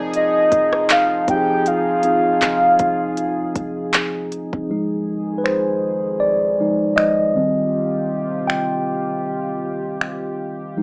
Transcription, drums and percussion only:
0.14 closed hi-hat medium
0.52 kick loud
0.52 closed hi-hat medium
0.73 cross-stick loud
0.90 clap loud
0.90 closed hi-hat medium
1.28 kick loud
1.28 closed hi-hat medium
1.66 closed hi-hat medium
2.03 closed hi-hat medium
2.42 clap loud
2.42 closed hi-hat medium
2.79 kick loud
2.79 closed hi-hat medium
3.17 closed hi-hat medium
3.56 kick medium
3.56 closed hi-hat medium
3.94 clap loud
3.94 closed hi-hat medium
4.32 closed hi-hat medium
4.53 kick medium
5.46 finger snap medium
6.98 finger snap loud
8.50 finger snap medium
10.01 finger snap loud

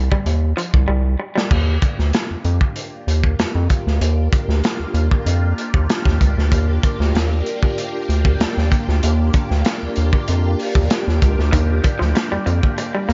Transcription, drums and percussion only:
0.12 kick medium
0.26 closed hi-hat medium
0.58 closed hi-hat medium
0.74 kick loud
1.38 snare medium
1.51 kick loud
1.51 crash medium
1.82 kick loud
1.82 closed hi-hat medium
1.99 snare soft
2.13 snare loud
2.13 closed hi-hat medium
2.44 closed hi-hat medium
2.61 kick medium
2.76 closed hi-hat medium
3.08 closed hi-hat medium
3.24 kick loud
3.39 snare loud
3.39 closed hi-hat medium
3.70 kick medium
3.70 closed hi-hat medium
3.87 snare soft
4.01 closed hi-hat medium
4.33 kick loud
4.33 closed hi-hat medium
4.49 snare soft
4.64 snare loud
4.64 closed hi-hat medium
4.94 closed hi-hat medium
5.11 kick medium
5.27 closed hi-hat medium
5.58 closed hi-hat medium
5.74 kick loud
5.90 snare loud
5.90 closed hi-hat medium
6.05 kick medium
6.05 snare soft
6.21 kick medium
6.21 closed hi-hat medium
6.39 snare soft
6.52 kick loud
6.52 closed hi-hat medium
6.83 kick loud
6.83 closed hi-hat medium
7.01 snare soft
7.15 snare loud
7.15 closed hi-hat medium
7.46 closed hi-hat medium
7.63 kick medium
7.78 closed hi-hat medium
8.10 closed hi-hat medium
8.25 kick loud
8.40 snare loud
8.40 closed hi-hat medium
8.58 snare soft
8.71 kick medium
8.71 closed hi-hat medium
8.89 snare soft
9.03 closed hi-hat loud
9.33 kick loud
9.33 closed hi-hat medium
9.51 snare soft
9.65 snare loud
9.65 closed hi-hat medium
9.96 closed hi-hat medium
10.13 kick medium
10.28 closed hi-hat medium
10.59 open hi-hat medium
10.75 kick loud
10.90 snare loud
10.90 closed hi-hat medium
11.09 snare soft
11.22 kick medium
11.22 closed hi-hat medium
11.39 snare soft
11.53 kick loud
11.53 closed hi-hat loud
11.84 kick loud
11.84 closed hi-hat medium
12.01 snare soft
12.15 snare loud
12.15 closed hi-hat medium
12.47 closed hi-hat medium
12.63 kick medium
12.78 closed hi-hat medium
13.10 closed hi-hat medium

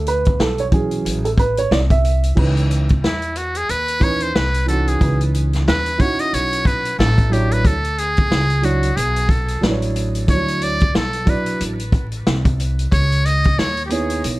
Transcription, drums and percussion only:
0.06 closed hi-hat medium
0.25 kick medium
0.25 closed hi-hat soft
0.40 snare loud
0.58 closed hi-hat soft
0.72 kick loud
0.72 closed hi-hat medium
0.91 closed hi-hat medium
1.06 closed hi-hat loud
1.25 closed hi-hat medium
1.38 kick medium
1.38 closed hi-hat medium
1.57 closed hi-hat medium
1.72 snare loud
1.90 kick medium
1.90 closed hi-hat medium
2.05 closed hi-hat medium
2.23 closed hi-hat medium
2.37 kick loud
2.37 crash loud
2.57 closed hi-hat medium
2.71 closed hi-hat medium
2.89 kick medium
2.89 closed hi-hat soft
3.04 snare medium
3.22 closed hi-hat soft
3.36 closed hi-hat medium
3.55 closed hi-hat medium
3.69 closed hi-hat medium
3.88 closed hi-hat medium
4.01 kick medium
4.01 closed hi-hat medium
4.20 closed hi-hat medium
4.36 snare loud
4.54 closed hi-hat medium
4.68 closed hi-hat medium
4.88 closed hi-hat soft
5.01 kick loud
5.01 closed hi-hat medium
5.21 closed hi-hat medium
5.34 closed hi-hat medium
5.53 snare soft
5.53 closed hi-hat soft
5.68 snare loud
5.86 closed hi-hat soft
6.00 kick loud
6.00 closed hi-hat medium
6.19 closed hi-hat medium
6.34 closed hi-hat medium
6.53 closed hi-hat medium
6.65 kick medium
6.65 closed hi-hat medium
6.85 closed hi-hat medium
7.00 snare loud
7.18 kick loud
7.18 closed hi-hat medium
7.33 closed hi-hat medium
7.51 closed hi-hat soft
7.65 kick loud
7.65 closed hi-hat loud
7.84 closed hi-hat medium
7.98 closed hi-hat medium
8.17 kick loud
8.17 closed hi-hat soft
8.32 snare loud
8.50 closed hi-hat soft
8.63 closed hi-hat medium
8.83 closed hi-hat medium
8.97 closed hi-hat medium
9.16 closed hi-hat medium
9.29 kick loud
9.29 closed hi-hat medium
9.48 closed hi-hat medium
9.63 snare loud
9.82 closed hi-hat medium
9.96 closed hi-hat medium
10.15 closed hi-hat soft
10.28 kick loud
10.28 closed hi-hat medium
10.48 closed hi-hat medium
10.62 closed hi-hat medium
10.80 kick medium
10.80 closed hi-hat soft
10.95 snare loud
11.13 closed hi-hat soft
11.27 kick loud
11.27 closed hi-hat medium
11.46 closed hi-hat medium
11.61 closed hi-hat medium
11.80 closed hi-hat medium
11.92 kick loud
11.92 closed hi-hat medium
12.12 closed hi-hat medium
12.27 snare loud
12.45 kick medium
12.45 closed hi-hat medium
12.60 closed hi-hat medium
12.79 closed hi-hat soft
12.92 kick loud
12.92 closed hi-hat medium
13.12 closed hi-hat medium
13.26 closed hi-hat medium
13.44 kick loud
13.44 closed hi-hat soft
13.59 snare loud
13.77 closed hi-hat soft
13.90 closed hi-hat medium
14.10 closed hi-hat medium
14.24 closed hi-hat medium

